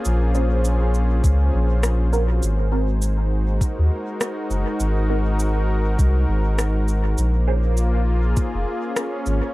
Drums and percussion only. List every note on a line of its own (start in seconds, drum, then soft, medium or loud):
0.05 cabasa soft
0.35 cabasa soft
0.65 cabasa soft
0.94 cabasa soft
1.24 kick loud
1.24 cabasa soft
1.83 cross-stick medium
1.83 cabasa soft
2.13 cabasa soft
2.43 cabasa soft
3.02 cabasa soft
3.61 kick loud
3.61 cabasa soft
4.21 cross-stick medium
4.21 cabasa soft
4.51 cabasa soft
4.80 cabasa soft
5.39 cabasa soft
5.99 kick loud
5.99 cabasa soft
6.59 cross-stick medium
6.59 cabasa soft
6.88 cabasa soft
7.18 cabasa soft
7.77 cabasa soft
8.37 kick loud
8.37 cabasa medium
8.96 cross-stick medium
8.96 cabasa soft
9.26 cabasa soft